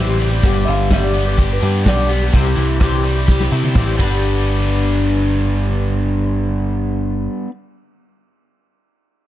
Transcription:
0.00 0.40 A1 medium
0.00 0.20 C3 medium
0.00 0.43 E3 medium
0.00 0.17 G3 medium
0.00 0.19 G3 medium
0.00 0.18 C4 medium
0.00 0.43 C4 medium
0.00 0.20 E4 medium
0.00 0.43 E4 medium
0.00 0.20 G4 medium
0.18 0.31 G3 medium
0.18 0.32 C4 medium
0.18 0.30 E4 medium
0.18 0.28 G4 medium
0.18 closed hi-hat medium
0.29 0.44 C4 soft
0.29 0.43 E4 soft
0.29 0.42 G4 medium
0.42 0.65 G1 medium
0.42 0.55 G2 medium
0.42 0.55 D3 medium
0.42 0.55 G3 medium
0.42 0.56 B3 medium
0.42 0.55 D4 medium
0.42 0.54 G4 medium
0.42 kick loud
0.42 closed hi-hat medium
0.55 0.90 G3 soft
0.55 0.91 B3 soft
0.55 0.91 D4 soft
0.55 0.91 G4 medium
0.65 1.58 G1 medium
0.65 1.86 D3 medium
0.65 0.67 E5 medium
0.65 closed hi-hat medium
0.69 0.91 F5 medium
0.90 1.14 G2 medium
0.90 1.15 D3 medium
0.90 1.12 G3 medium
0.90 1.14 B3 medium
0.90 1.15 D4 medium
0.90 1.16 G4 medium
0.90 1.03 E5 medium
0.90 kick loud
0.90 snare loud
0.90 closed hi-hat medium
1.03 1.49 D5 medium
1.13 1.26 G3 soft
1.13 1.26 B3 medium
1.13 1.26 D4 medium
1.13 1.24 G4 medium
1.13 closed hi-hat medium
1.25 1.51 G3 soft
1.25 1.51 B3 soft
1.25 1.50 D4 soft
1.25 1.49 G4 medium
1.38 3.27 G4 medium
1.38 kick medium
1.38 closed hi-hat medium
1.50 1.60 G3 soft
1.50 1.62 B3 soft
1.50 1.63 D4 soft
1.50 1.62 G4 soft
1.50 1.85 B4 medium
1.61 1.84 G2 medium
1.61 1.85 G3 medium
1.61 1.86 B3 medium
1.61 1.87 D4 medium
1.61 1.87 G4 medium
1.61 closed hi-hat soft
1.86 2.29 B1 medium
1.86 2.10 G2 medium
1.86 2.10 D3 medium
1.86 2.08 G3 medium
1.86 2.10 B3 medium
1.86 2.10 D4 medium
1.86 2.11 G4 medium
1.86 2.10 D5 medium
1.86 kick loud
1.86 snare loud
1.86 closed hi-hat medium
2.09 2.21 G3 medium
2.09 2.22 B3 medium
2.09 2.21 D4 medium
2.09 2.20 G4 medium
2.09 closed hi-hat medium
2.22 2.33 G3 soft
2.22 2.34 B3 soft
2.22 2.34 D4 soft
2.22 2.33 G4 soft
2.33 2.55 C2 medium
2.33 2.45 C3 medium
2.33 2.45 G3 medium
2.33 2.46 C4 medium
2.33 2.45 E4 medium
2.33 2.43 G4 medium
2.33 kick loud
2.33 closed hi-hat medium
2.44 2.80 C4 soft
2.44 2.81 E4 soft
2.44 2.80 G4 medium
2.56 3.48 C2 medium
2.56 2.79 E3 medium
2.56 closed hi-hat medium
2.80 3.04 C3 medium
2.80 3.74 E3 medium
2.80 3.02 G3 medium
2.80 3.03 C4 medium
2.80 3.04 E4 medium
2.80 3.05 G4 loud
2.80 kick loud
2.80 cross-stick medium
2.80 closed hi-hat medium
3.03 3.16 G3 medium
3.03 3.16 C4 medium
3.03 3.15 E4 medium
3.03 3.13 G4 medium
3.03 closed hi-hat medium
3.14 3.41 C4 soft
3.14 3.39 E4 medium
3.14 3.38 G4 medium
3.27 3.99 G4 medium
3.27 kick medium
3.27 snare soft
3.39 3.51 C4 soft
3.39 3.52 E4 soft
3.39 3.51 G4 medium
3.39 snare soft
3.51 3.74 C3 medium
3.51 3.74 G3 medium
3.51 3.74 C4 medium
3.51 3.75 E4 medium
3.51 3.76 G4 medium
3.64 high tom medium
3.74 3.97 A1 medium
3.74 3.98 C3 medium
3.74 3.97 E3 medium
3.74 3.99 G3 medium
3.74 3.99 C4 medium
3.74 4.00 E4 medium
3.74 4.00 G4 medium
3.74 kick loud
3.74 mid tom medium
3.95 7.45 G2 medium
3.95 7.48 D3 medium
3.95 7.49 D4 medium
3.95 kick medium
3.99 7.27 G1 medium
3.99 7.50 G3 medium
3.99 7.52 B3 medium
3.99 7.51 B4 medium
3.99 ride medium
4.04 7.54 D4 medium
4.04 7.56 G4 medium

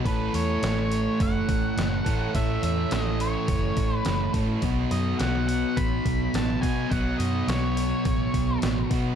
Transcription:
0.04 0.27 A1 loud
0.04 2.04 A2 medium
0.04 2.04 E3 medium
0.04 2.04 A3 medium
0.04 2.05 C#4 medium
0.04 2.03 A4 loud
0.04 0.32 B4 medium
0.04 kick loud
0.04 open hi-hat medium
0.10 2.04 A3 loud
0.34 0.56 E2 medium
0.34 1.22 C#5 medium
0.34 open hi-hat medium
0.63 1.06 A1 medium
0.63 snare loud
0.63 open hi-hat medium
0.78 snare soft
0.92 open hi-hat medium
1.20 1.42 F#1 loud
1.20 2.35 F#5 loud
1.20 kick loud
1.20 open hi-hat medium
1.49 1.71 A1 medium
1.49 kick medium
1.49 open hi-hat medium
1.77 1.99 F#1 medium
1.77 snare loud
1.77 open hi-hat medium
2.05 2.28 A2 medium
2.05 2.32 A2 medium
2.05 2.33 E3 medium
2.05 2.33 A3 medium
2.05 2.35 C#4 medium
2.05 2.32 A4 medium
2.05 kick medium
2.05 open hi-hat medium
2.33 2.56 A1 medium
2.33 4.32 A2 medium
2.33 4.33 E3 medium
2.33 4.33 A3 loud
2.33 4.35 C#4 loud
2.33 4.33 A4 medium
2.33 2.63 E5 medium
2.33 kick loud
2.33 open hi-hat medium
2.63 2.85 E2 medium
2.63 2.93 E5 medium
2.63 open hi-hat medium
2.91 3.35 A1 medium
2.91 3.19 D#5 medium
2.91 snare loud
2.91 open hi-hat medium
3.07 snare soft
3.20 3.97 C#5 medium
3.20 open hi-hat medium
3.48 3.70 F#1 medium
3.48 kick loud
3.48 open hi-hat medium
3.77 3.99 A1 medium
3.77 kick medium
3.77 open hi-hat medium
3.97 4.31 B4 medium
4.05 4.28 F#1 medium
4.05 snare loud
4.05 open hi-hat medium
4.21 snare soft
4.34 4.56 A2 medium
4.34 4.62 A2 medium
4.34 4.62 E3 medium
4.34 4.62 A3 medium
4.34 4.64 C#4 medium
4.34 4.61 A4 medium
4.34 kick medium
4.34 open hi-hat medium
4.62 4.85 B1 loud
4.62 6.61 B2 medium
4.62 6.61 F#3 medium
4.62 6.62 B3 medium
4.62 6.61 D#4 loud
4.62 6.60 F#4 loud
4.62 kick loud
4.62 open hi-hat medium
4.91 5.13 F#2 medium
4.91 5.19 D#5 medium
4.91 open hi-hat medium
5.19 5.63 B1 medium
5.19 5.47 F#5 loud
5.19 snare loud
5.19 open hi-hat medium
5.35 snare soft
5.48 5.78 F#5 medium
5.48 open hi-hat medium
5.77 5.99 A1 medium
5.77 6.35 B5 loud
5.77 kick loud
5.77 open hi-hat medium
6.05 6.27 B1 medium
6.05 kick medium
6.05 open hi-hat medium
6.34 6.56 A1 medium
6.34 6.61 A5 loud
6.34 snare loud
6.34 open hi-hat medium
6.50 snare soft
6.61 6.85 B2 medium
6.61 6.90 B2 medium
6.61 6.90 F#3 medium
6.61 6.90 B3 medium
6.61 6.90 D#4 medium
6.61 6.89 F#4 medium
6.61 6.92 G#5 medium
6.61 kick medium
6.61 open hi-hat medium
6.90 7.13 B1 loud
6.90 8.89 B2 medium
6.90 8.89 F#3 medium
6.90 8.90 B3 medium
6.90 8.90 D#4 medium
6.90 7.18 F#5 medium
6.90 kick loud
6.90 open hi-hat medium
6.94 8.89 F#4 medium
7.18 7.41 F#2 medium
7.18 7.48 D#5 medium
7.18 open hi-hat medium
7.48 7.91 B1 medium
7.48 8.58 C#5 medium
7.48 snare loud
7.48 open hi-hat medium
7.77 open hi-hat medium
8.05 8.27 A1 medium
8.05 kick loud
8.05 open hi-hat medium
8.34 8.56 B1 medium
8.34 kick medium
8.34 open hi-hat medium
8.62 8.84 A1 medium
8.62 snare loud
8.62 open hi-hat medium
8.78 snare soft
8.90 9.12 B2 medium
8.90 9.15 B2 medium
8.90 9.15 F#3 medium
8.90 9.15 B3 medium
8.90 9.15 D#4 medium
8.90 9.15 F#4 medium
8.90 kick medium
8.90 open hi-hat medium

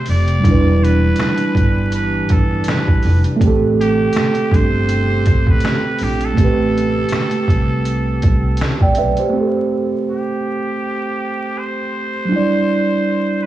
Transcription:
0.00 0.41 C3 medium
0.00 0.39 A3 medium
0.00 0.41 C4 medium
0.00 0.42 G4 medium
0.00 3.37 G4 medium
0.00 0.44 C5 medium
0.06 0.40 F1 medium
0.06 0.85 D5 loud
0.06 open hi-hat medium
0.28 closed hi-hat soft
0.40 3.35 G3 medium
0.40 3.36 D4 medium
0.44 1.09 E1 loud
0.44 3.38 E3 medium
0.44 3.38 D4 medium
0.44 3.38 E4 medium
0.44 kick loud
0.44 closed hi-hat medium
0.51 3.40 B4 medium
0.83 1.94 B4 loud
0.83 closed hi-hat medium
1.16 snare medium
1.16 closed hi-hat medium
1.20 finger snap medium
1.38 closed hi-hat soft
1.55 2.20 G1 medium
1.55 kick medium
1.55 closed hi-hat medium
1.92 2.33 B4 medium
1.92 closed hi-hat medium
2.29 2.63 G1 medium
2.29 2.68 A4 medium
2.29 kick medium
2.29 closed hi-hat medium
2.64 closed hi-hat medium
2.68 3.23 B4 medium
2.68 finger snap medium
2.68 snare loud
2.88 kick medium
3.03 3.23 F1 medium
3.03 open hi-hat medium
3.24 closed hi-hat soft
3.36 6.31 A3 medium
3.36 6.33 C4 medium
3.41 4.06 A1 medium
3.41 9.30 C3 medium
3.41 9.30 C4 medium
3.41 6.34 G4 medium
3.41 6.35 G4 medium
3.41 kick loud
3.41 closed hi-hat medium
3.47 6.37 A4 medium
3.80 4.56 G4 loud
3.80 closed hi-hat medium
4.13 snare loud
4.13 closed hi-hat medium
4.17 finger snap medium
4.35 closed hi-hat soft
4.52 5.44 G1 medium
4.52 5.52 C5 loud
4.52 kick loud
4.52 closed hi-hat medium
4.89 closed hi-hat medium
5.26 kick medium
5.26 closed hi-hat medium
5.47 5.61 A1 medium
5.47 6.05 B4 loud
5.47 kick medium
5.60 closed hi-hat medium
5.65 finger snap medium
5.65 snare loud
5.99 6.33 A#1 medium
5.99 open hi-hat medium
6.03 6.26 G4 medium
6.21 8.98 A4 loud
6.21 closed hi-hat soft
6.33 9.28 A3 medium
6.33 9.30 C4 medium
6.33 kick loud
6.38 7.02 A1 loud
6.38 9.31 G4 medium
6.38 8.57 G4 medium
6.38 closed hi-hat medium
6.44 8.59 B4 medium
6.78 closed hi-hat medium
7.09 snare loud
7.09 closed hi-hat medium
7.13 finger snap medium
7.31 closed hi-hat soft
7.48 8.13 C2 medium
7.48 kick loud
7.48 closed hi-hat medium
7.85 closed hi-hat medium
8.22 8.55 C2 medium
8.22 kick medium
8.22 closed hi-hat medium
8.57 closed hi-hat medium
8.61 finger snap medium
8.61 snare loud
8.81 8.97 D5 soft
8.81 8.96 G5 medium
8.81 kick medium
8.95 9.16 B1 medium
8.95 9.18 B4 medium
8.95 9.18 E5 medium
8.95 closed hi-hat medium
9.17 9.36 G4 medium
9.17 9.46 C5 medium
9.17 closed hi-hat soft
9.29 12.24 A3 medium
9.29 12.26 C4 medium
9.37 12.28 G4 medium
9.37 9.45 A4 medium
9.47 12.33 C5 medium
10.10 11.60 G4 medium
11.58 13.44 C5 loud
12.25 12.35 F#3 soft
12.25 13.46 D4 medium
12.32 13.46 G3 medium
12.32 13.46 E4 medium
12.36 13.46 D5 medium
13.43 13.46 B4 medium

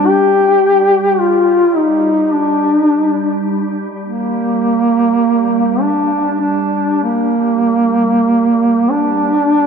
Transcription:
0.00 8.91 G3 soft
0.06 1.21 G4 loud
1.20 1.78 F4 medium
1.76 2.35 D#4 medium
2.34 3.48 D4 medium
4.05 5.83 A#3 medium
5.81 6.40 D4 medium
6.41 6.99 D4 medium
7.04 8.92 A#3 medium
8.91 9.67 G3 soft
8.91 9.67 D4 loud

